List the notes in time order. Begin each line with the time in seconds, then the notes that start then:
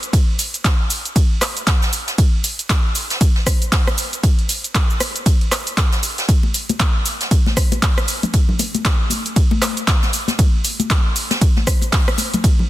0.03 closed hi-hat, shaker
0.13 kick, closed hi-hat, ride, shaker
0.39 closed hi-hat, open hi-hat, shaker
0.54 closed hi-hat, shaker
0.64 kick, snare, clap, closed hi-hat, ride, shaker
0.90 closed hi-hat, open hi-hat, shaker
1.05 closed hi-hat, shaker
1.16 kick, closed hi-hat, ride, shaker
1.41 cross-stick, clap, closed hi-hat, open hi-hat, shaker
1.57 closed hi-hat, shaker
1.67 kick, snare, clap, closed hi-hat, ride, shaker
1.82 snare, shaker
1.93 closed hi-hat, open hi-hat, shaker
2.07 snare, closed hi-hat, shaker
2.18 kick, closed hi-hat, ride, shaker
2.44 closed hi-hat, open hi-hat, shaker
2.59 closed hi-hat, shaker
2.70 kick, snare, clap, closed hi-hat, ride, shaker
2.95 closed hi-hat, open hi-hat, shaker
3.10 snare, closed hi-hat, shaker
3.21 kick, closed hi-hat, ride, shaker
3.35 snare
3.46 kick, cross-stick, closed hi-hat, open hi-hat, shaker
3.62 closed hi-hat, shaker
3.72 kick, snare, clap, closed hi-hat, open hi-hat, ride, shaker
3.87 cross-stick, shaker
3.98 closed hi-hat, open hi-hat, shaker
4.13 closed hi-hat, shaker
4.23 kick, closed hi-hat, ride, shaker
4.39 closed hi-hat
4.49 closed hi-hat, open hi-hat, shaker
4.64 closed hi-hat, shaker
4.74 kick, snare, clap, closed hi-hat, ride, shaker
4.90 shaker
5.00 cross-stick, closed hi-hat, open hi-hat, shaker
5.16 closed hi-hat, shaker
5.26 kick, closed hi-hat, ride, shaker
5.41 closed hi-hat
5.52 cross-stick, clap, closed hi-hat, open hi-hat, shaker
5.67 closed hi-hat, shaker
5.77 kick, snare, clap, closed hi-hat, ride, shaker
5.92 snare, closed hi-hat, shaker
6.03 closed hi-hat, open hi-hat, shaker
6.18 snare, closed hi-hat, shaker
6.28 kick, closed hi-hat, ride, shaker
6.43 muted conga
6.54 closed hi-hat, open hi-hat, shaker
6.69 closed hi-hat, high conga, shaker
6.79 kick, snare, clap, closed hi-hat, ride, muted conga, shaker
7.06 closed hi-hat, open hi-hat, shaker
7.21 snare, closed hi-hat, shaker
7.31 kick, closed hi-hat, ride, muted conga, shaker
7.46 snare, high conga
7.57 kick, cross-stick, closed hi-hat, open hi-hat, shaker
7.72 closed hi-hat, muted conga, shaker
7.82 kick, snare, clap, closed hi-hat, open hi-hat, ride, high conga, shaker
7.98 cross-stick, shaker
8.08 closed hi-hat, open hi-hat, shaker
8.23 closed hi-hat, muted conga, high conga, low conga, shaker
8.34 kick, closed hi-hat, ride, shaker
8.49 low conga
8.59 closed hi-hat, open hi-hat, muted conga, shaker
8.75 closed hi-hat, high conga, shaker
8.85 kick, snare, clap, closed hi-hat, ride, shaker
9.10 closed hi-hat, open hi-hat, muted conga, high conga, shaker
9.26 closed hi-hat, shaker
9.36 kick, closed hi-hat, ride, shaker
9.51 muted conga, high conga
9.62 cross-stick, clap, closed hi-hat, open hi-hat, shaker
9.77 closed hi-hat, shaker
9.87 kick, snare, clap, closed hi-hat, ride, high conga, shaker
10.02 snare, muted conga, shaker
10.13 closed hi-hat, open hi-hat, shaker
10.28 snare, closed hi-hat, high conga, shaker
10.39 kick, closed hi-hat, ride, muted conga, shaker
10.64 closed hi-hat, open hi-hat, shaker
10.80 closed hi-hat, high conga, shaker
10.90 kick, snare, clap, closed hi-hat, ride, muted conga, shaker
11.16 closed hi-hat, open hi-hat, shaker
11.30 snare, closed hi-hat, muted conga, shaker
11.41 kick, closed hi-hat, ride, shaker
11.56 snare, high conga
11.67 kick, cross-stick, closed hi-hat, open hi-hat, shaker
11.82 closed hi-hat, muted conga, shaker
11.92 kick, snare, clap, closed hi-hat, open hi-hat, ride, high conga, shaker
12.08 cross-stick, shaker
12.18 closed hi-hat, open hi-hat, muted conga, shaker
12.34 closed hi-hat, high conga, low conga, shaker
12.44 kick, closed hi-hat, ride, shaker
12.59 low conga